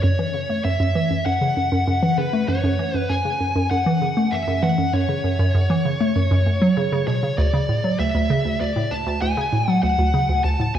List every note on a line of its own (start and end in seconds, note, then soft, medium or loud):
0.03 0.13 F#2 loud
0.03 0.61 C#5 medium
0.19 0.25 E3 loud
0.34 0.44 C#3 medium
0.50 0.59 A3 medium
0.65 0.74 F#2 medium
0.65 1.25 E5 medium
0.80 0.95 F#2 loud
0.95 1.10 E3 loud
1.11 1.20 F#2 medium
1.26 1.36 F#2 medium
1.26 2.21 F#5 medium
1.41 1.47 C#3 medium
1.57 1.66 F#2 medium
1.72 1.82 F#2 loud
1.87 1.97 F#2 loud
2.03 2.08 E3 loud
2.18 2.28 C#3 medium
2.18 2.46 B4 medium
2.33 2.43 A3 medium
2.48 2.58 F#2 medium
2.48 2.96 C#5 medium
2.64 2.78 F#2 loud
2.79 2.94 E3 loud
2.94 3.04 F#2 medium
2.94 3.12 B4 medium
3.10 3.19 F#2 medium
3.10 3.70 G#5 medium
3.25 3.31 C#3 medium
3.40 3.50 F#2 medium
3.56 3.65 F#2 loud
3.71 3.81 F#2 medium
3.71 4.34 F#5 medium
3.86 3.92 E3 loud
4.02 4.11 C#3 medium
4.17 4.27 A3 medium
4.32 4.42 F#2 medium
4.32 4.64 E5 medium
4.47 4.62 F#2 loud
4.62 4.77 E3 loud
4.62 4.91 F#5 medium
4.78 4.88 F#2 medium
4.93 5.03 F#2 medium
4.93 7.06 C#5 medium
5.09 5.15 C#3 medium
5.24 5.34 F#2 medium
5.39 5.49 F#2 loud
5.55 5.64 F#2 loud
5.70 5.76 E3 loud
5.85 5.95 C#3 medium
6.01 6.10 A3 medium
6.16 6.26 F#2 medium
6.31 6.45 F#2 loud
6.46 6.56 F#2 medium
6.62 6.68 F#3 loud
6.77 6.87 C#3 medium
6.92 7.02 C#3 loud
7.08 7.22 B2 medium
7.08 7.38 C#5 medium
7.23 7.33 C#3 medium
7.38 7.48 D2 loud
7.38 7.99 D5 loud
7.54 7.59 C#3 loud
7.69 7.79 A2 medium
7.84 7.94 F#3 medium
7.99 8.09 D2 medium
7.99 8.60 E5 loud
8.15 8.29 D2 loud
8.30 8.45 C#3 loud
8.45 8.55 D2 medium
8.61 8.70 D2 medium
8.61 8.92 D5 medium
8.76 8.82 A2 medium
8.91 9.01 D2 medium
8.91 9.21 A5 loud
9.06 9.16 D2 loud
9.21 9.32 D2 loud
9.21 9.71 G#5 loud
9.37 9.43 C#3 loud
9.53 9.62 A2 medium
9.68 9.78 F#3 medium
9.68 9.83 F#5 loud
9.83 9.93 D2 medium
9.83 10.44 F#5 loud
9.99 10.13 D2 loud
10.14 10.28 C#3 loud
10.29 10.39 D2 medium
10.44 10.54 D2 medium
10.44 10.75 A5 loud
10.60 10.66 A2 medium
10.75 10.79 D2 medium
10.75 10.79 G#5 loud